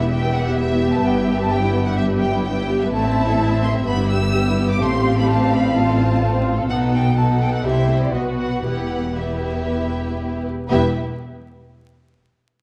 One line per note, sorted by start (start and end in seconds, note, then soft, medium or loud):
0.00 1.05 E1 medium
0.00 1.04 E2 medium
0.00 2.88 B3 medium
0.00 0.13 E4 soft
0.00 2.92 G4 medium
0.00 2.88 E5 medium
0.00 0.05 E5 medium
0.12 0.23 G4 medium
0.12 0.35 G5 medium
0.25 0.36 B4 soft
0.35 0.48 G4 soft
0.35 0.59 F#5 medium
0.48 0.59 E4 soft
0.58 0.71 B3 soft
0.58 0.92 E5 medium
0.72 0.83 E4 soft
0.83 0.94 G4 soft
0.93 1.05 B4 medium
0.93 1.04 A5 medium
1.04 2.89 G1 medium
1.04 2.88 G2 medium
1.04 1.15 B3 medium
1.04 1.40 G5 medium
1.16 1.27 E4 soft
1.27 1.39 G4 medium
1.38 1.50 B4 medium
1.38 1.51 A5 medium
1.50 1.62 G4 medium
1.50 1.86 G5 medium
1.62 1.73 E4 medium
1.73 1.85 B3 medium
1.85 1.97 E4 soft
1.85 1.96 F#5 medium
1.96 2.07 G4 medium
1.96 2.04 E5 medium
2.08 2.20 B4 medium
2.19 2.32 G4 soft
2.19 2.42 G5 medium
2.33 2.44 E4 soft
2.44 2.56 B3 medium
2.44 2.79 G5 medium
2.57 2.68 E4 soft
2.69 2.80 G4 medium
2.80 2.93 B4 medium
2.80 2.92 E5 medium
2.91 3.84 A1 medium
2.91 3.84 A2 medium
2.91 3.04 A3 medium
2.91 3.86 C4 medium
2.91 3.86 E4 medium
2.91 4.78 E5 medium
2.91 3.61 A5 medium
3.05 3.16 C4 medium
3.17 3.28 E4 medium
3.29 3.40 A4 medium
3.41 3.52 E4 medium
3.51 3.63 C4 medium
3.63 3.75 A3 medium
3.63 3.71 C6 medium
3.74 3.86 C4 medium
3.86 4.80 G1 medium
3.86 4.79 G2 medium
3.86 4.79 B3 medium
3.86 3.97 B3 medium
3.86 5.71 G4 medium
3.86 4.09 B5 medium
3.98 4.10 E4 medium
4.10 4.22 G4 medium
4.10 4.68 E6 medium
4.22 4.34 B4 medium
4.34 4.46 G4 medium
4.46 4.58 E4 medium
4.59 4.70 B3 soft
4.69 4.81 E4 medium
4.69 4.81 D6 medium
4.81 6.70 A1 medium
4.81 6.69 A2 medium
4.81 4.92 A3 medium
4.81 6.69 C4 medium
4.81 6.66 F5 medium
4.81 5.16 C6 medium
4.93 5.05 C4 medium
5.04 5.16 F4 medium
5.16 5.28 A4 medium
5.16 5.29 B5 medium
5.28 5.40 F4 medium
5.28 5.52 A5 medium
5.41 5.52 C4 medium
5.52 5.64 A3 medium
5.52 5.76 B5 medium
5.63 5.75 C4 medium
5.76 5.87 F4 medium
5.76 6.70 F4 medium
5.76 6.46 A5 medium
5.87 5.99 A4 soft
6.00 6.11 F4 soft
6.11 6.22 C4 soft
6.22 6.34 A3 medium
6.33 6.45 C4 medium
6.45 6.57 F4 soft
6.57 6.67 A4 medium
6.68 7.60 B1 medium
6.68 7.61 B2 medium
6.68 7.14 B3 medium
6.68 7.14 D#4 soft
6.68 7.13 A4 medium
6.68 7.13 F#5 medium
6.68 6.77 F#5 medium
6.94 7.17 G5 medium
7.17 7.64 B3 soft
7.17 7.64 D#4 soft
7.17 7.64 A4 medium
7.17 7.64 F#5 medium
7.17 7.25 A5 medium
7.41 7.53 G5 medium
7.54 7.65 F#5 medium
7.63 8.13 C2 medium
7.63 8.13 C3 soft
7.63 7.73 G3 soft
7.63 8.14 E4 soft
7.63 8.13 G4 soft
7.63 8.13 C5 medium
7.63 8.01 E5 medium
7.88 7.96 A3 soft
8.02 8.14 D5 medium
8.12 8.63 B1 soft
8.12 8.63 B2 soft
8.12 8.62 B3 soft
8.12 8.63 F#4 soft
8.12 8.61 B4 soft
8.12 8.22 D#5 medium
8.39 8.62 F#5 medium
8.62 10.49 E1 soft
8.62 10.49 E2 soft
8.62 9.13 B3 soft
8.62 9.13 E4 soft
8.62 9.13 G4 soft
8.62 9.13 B4 soft
8.62 9.14 F#5 medium
9.14 10.46 B3 soft
9.14 10.46 E4 soft
9.14 10.46 G4 soft
9.14 10.46 B4 soft
9.14 10.45 E5 soft
10.69 10.99 E1 medium
10.69 10.99 E2 medium
10.69 10.99 B3 soft
10.69 10.99 E4 soft
10.69 10.98 G4 soft
10.69 10.98 B4 medium
10.69 10.98 E5 medium